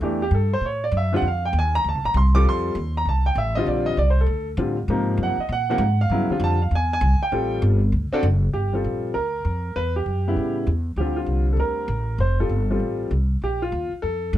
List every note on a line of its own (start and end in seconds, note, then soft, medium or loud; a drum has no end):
0.01 0.30 E2 medium
0.01 0.19 E3 medium
0.01 0.20 A3 medium
0.01 0.20 D4 medium
0.01 0.20 G4 medium
0.22 0.33 G4 medium
0.31 0.60 G2 medium
0.31 0.52 A4 medium
0.53 0.64 C5 medium
0.61 0.91 A2 medium
0.66 0.83 C#5 medium
0.84 0.94 D5 medium
0.92 1.21 F#2 loud
0.97 1.14 E5 medium
1.12 1.23 D3 medium
1.12 1.23 G3 medium
1.12 1.23 C4 medium
1.12 1.23 F4 medium
1.12 1.25 F#5 loud
1.22 1.52 F2 medium
1.28 1.44 F5 medium
1.45 1.55 G5 medium
1.53 1.83 D#2 loud
1.59 1.75 G#5 loud
1.75 1.85 A#5 loud
1.84 1.95 D2 medium
1.89 2.05 A5 medium
1.95 2.03 C2 medium
2.04 2.14 A1 medium
2.04 2.16 A#5 loud
2.14 2.44 C2 loud
2.14 2.35 C6 medium
2.35 2.74 G3 medium
2.35 2.74 C4 medium
2.35 2.75 F4 medium
2.35 2.75 A4 medium
2.35 2.46 D6 loud
2.45 2.74 F2 medium
2.49 2.93 C6 loud
2.75 3.05 D#2 loud
2.97 3.07 A#5 medium
3.05 3.35 C2 medium
3.05 3.26 A5 medium
3.26 3.37 G5 medium
3.35 3.66 A1 medium
3.35 3.56 E5 medium
3.55 3.96 D3 medium
3.55 3.96 G3 medium
3.55 3.96 C4 medium
3.55 3.97 F4 medium
3.55 3.67 D#5 loud
3.66 3.96 A#1 medium
3.66 3.86 D5 medium
3.86 3.97 D#5 loud
3.97 4.26 C2 medium
3.97 4.08 D5 medium
4.10 4.19 C5 medium
4.21 4.48 A4 medium
4.26 4.56 D2 medium
4.57 4.87 A2 loud
4.57 4.75 D3 medium
4.57 4.76 G3 medium
4.57 4.76 C4 medium
4.57 4.76 F4 medium
4.88 5.17 G#2 medium
4.88 5.35 C3 medium
4.88 5.35 F3 medium
4.88 5.35 A#3 medium
4.88 5.35 D#4 medium
5.17 5.36 F#2 medium
5.23 5.40 F#5 medium
5.38 5.50 D#5 medium
5.38 muted upright bass stroke soft
5.49 5.78 A#2 medium
5.49 5.69 F#5 loud
5.69 5.79 C3 medium
5.69 5.80 F3 medium
5.69 5.80 A#3 medium
5.69 5.80 D#4 medium
5.69 5.98 F#5 medium
5.78 6.09 G#2 loud
6.01 6.39 F5 loud
6.10 6.28 G2 medium
6.10 6.28 C#3 medium
6.10 6.28 F#3 medium
6.10 6.29 B3 medium
6.10 6.29 E4 medium
6.30 6.57 D3 medium
6.30 6.57 G3 medium
6.30 6.57 C4 medium
6.30 6.57 F4 medium
6.30 muted upright bass stroke soft
6.40 6.70 F2 loud
6.44 6.61 A5 loud
6.62 6.72 F5 medium
6.71 7.00 E2 medium
6.75 6.92 G#5 loud
6.93 7.20 G#5 loud
7.01 7.19 C2 loud
7.20 7.61 G5 loud
7.20 muted upright bass stroke soft
7.32 7.61 A1 medium
7.32 7.78 G3 medium
7.32 7.78 C4 medium
7.32 7.78 F4 medium
7.32 7.79 A4 medium
7.62 7.92 G1 loud
7.92 8.10 D2 medium
8.12 8.23 C4 loud
8.12 8.23 D4 loud
8.12 8.23 F#4 medium
8.12 8.23 A4 loud
8.12 muted upright bass stroke soft
8.23 8.53 F#1 loud
8.53 8.83 G1 medium
8.53 8.73 G4 medium
8.73 9.13 G3 medium
8.73 9.13 C4 medium
8.73 9.13 F4 medium
8.73 9.14 A4 medium
8.84 9.14 A#1 medium
9.14 9.44 D2 medium
9.14 9.77 A#4 medium
9.45 9.75 F2 medium
9.76 10.05 E2 medium
9.76 9.94 B4 loud
9.96 10.53 G4 medium
10.06 10.36 F#2 medium
10.27 10.66 C#3 medium
10.27 10.66 G3 medium
10.27 10.66 B3 medium
10.27 10.66 E4 medium
10.36 10.66 A2 medium
10.67 10.96 E2 medium
10.96 11.26 D2 medium
10.96 11.84 D3 medium
10.96 11.84 G3 soft
10.96 11.84 C4 soft
10.96 11.18 G4 medium
11.01 11.15 F4 medium
11.16 11.45 F4 medium
11.26 11.56 C2 medium
11.53 11.58 A4 medium
11.57 11.87 D2 medium
11.57 12.16 A#4 medium
11.88 12.18 A1 loud
12.18 12.49 F1 medium
12.18 12.40 C5 medium
12.40 12.50 G3 medium
12.40 12.50 C4 medium
12.40 12.50 F4 medium
12.40 12.69 A4 medium
12.49 12.79 G1 medium
12.71 13.10 G3 medium
12.71 13.10 C4 medium
12.71 13.10 F4 medium
12.71 13.10 A4 medium
12.80 13.10 A1 medium
13.11 13.41 C2 medium
13.42 13.71 A#1 medium
13.42 13.61 G4 medium
13.62 13.90 F4 medium
13.72 13.90 D#2 medium
13.92 muted upright bass stroke soft
14.02 14.32 F2 medium
14.02 14.38 A4 medium
14.33 14.38 G2 loud